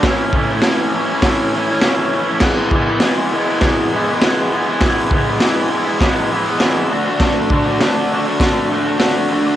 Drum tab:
CC |--------|x-------|--------|--------|
HH |o-o-o-o-|--o-o-o-|o-o-o-o-|o-o-o-o-|
SD |o-o-o-o-|o-o-o-o-|o-o-o-o-|o-o-o-o-|
BD |oo--o---|oo--o---|oo--o---|oo--o---|